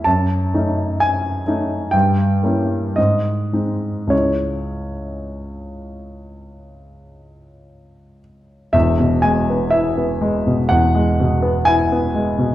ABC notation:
X:1
M:4/4
L:1/16
Q:1/4=60
K:C#m
V:1 name="Grand piano"
a4 g4 =g4 d4 | c12- c2 z2 | [K:E] e2 g2 e4 f4 g4 |]
V:2 name="Grand piano"
F,,2 [A,CD]4 [A,CD]2 =G,,2 [_B,_DE]2 ^G,,2 [G,^B,^D]2 | [C,,G,CE]16 | [K:E] [E,,,E,,] B,, G, B, E B, G, B,, E,, G, B,, B, E B, G, B,, |]